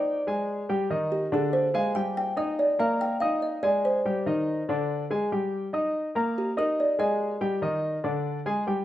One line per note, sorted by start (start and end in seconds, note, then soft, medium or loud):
0.00 0.20 D#4 medium
0.00 0.25 D5 medium
0.00 0.20 G5 medium
0.00 0.20 D6 medium
0.27 0.61 G#3 medium
0.27 0.62 G#4 medium
0.27 0.62 G#5 medium
0.69 0.86 G3 medium
0.69 0.87 G4 medium
0.69 0.87 G5 medium
0.90 1.25 D#3 medium
0.90 1.25 D#4 medium
0.90 1.25 D#5 medium
1.12 1.32 G4 medium
1.32 1.67 D3 medium
1.32 1.67 D4 medium
1.32 1.54 G#4 medium
1.32 1.67 D5 medium
1.53 1.74 C5 medium
1.74 1.92 G#3 medium
1.74 1.92 G#4 medium
1.74 1.95 F5 medium
1.74 1.92 G#5 medium
1.95 2.30 G3 medium
1.95 2.30 G4 medium
1.95 2.30 G5 medium
1.95 2.16 G#5 medium
2.18 2.37 G5 medium
2.37 2.71 D#4 medium
2.37 2.72 D#5 medium
2.37 2.58 D#5 medium
2.37 2.72 D#6 medium
2.59 2.79 D5 medium
2.79 3.14 A#3 medium
2.79 3.14 A#4 medium
2.79 3.00 F5 medium
2.79 3.14 A#5 medium
3.01 3.21 G5 medium
3.20 3.56 D#4 medium
3.20 3.56 D#5 medium
3.20 3.41 F5 medium
3.20 3.56 D#6 medium
3.42 3.63 D#5 medium
3.63 3.98 G#3 medium
3.63 3.98 G#4 medium
3.63 3.84 D5 medium
3.63 3.98 G#5 medium
3.85 4.65 C5 medium
4.05 4.23 G3 medium
4.05 4.23 G4 medium
4.05 4.23 G5 medium
4.26 4.61 D#3 medium
4.26 4.61 D#4 medium
4.26 4.61 D#5 medium
4.69 5.03 D3 medium
4.69 5.03 D4 medium
4.69 5.03 D5 medium
5.10 5.28 G#3 medium
5.10 5.28 G#4 medium
5.10 5.28 G#5 medium
5.32 5.66 G3 medium
5.32 5.66 G4 medium
5.32 5.66 G5 medium
5.73 6.08 D#4 medium
5.73 6.08 D#5 medium
5.73 6.08 D#6 medium
6.15 6.50 A#3 medium
6.15 6.50 A#4 medium
6.15 6.50 A#5 medium
6.38 6.58 G4 medium
6.57 6.91 D#4 medium
6.57 6.78 A#4 medium
6.57 6.92 D#5 medium
6.57 6.92 D#6 medium
6.80 6.99 D5 medium
6.98 7.33 G#3 medium
6.98 7.33 G#4 medium
6.98 7.38 D#5 medium
6.98 7.34 G#5 medium
7.41 7.58 G3 medium
7.41 7.58 G4 medium
7.41 7.58 G5 medium
7.62 7.96 D#3 medium
7.62 7.97 D#4 medium
7.62 7.97 D#5 medium
8.04 8.38 D3 medium
8.04 8.38 D4 medium
8.04 8.39 D5 medium
8.46 8.63 G#3 medium
8.46 8.63 G#4 medium
8.46 8.63 G#5 medium
8.67 8.85 G3 medium
8.67 8.85 G4 medium
8.67 8.85 G5 medium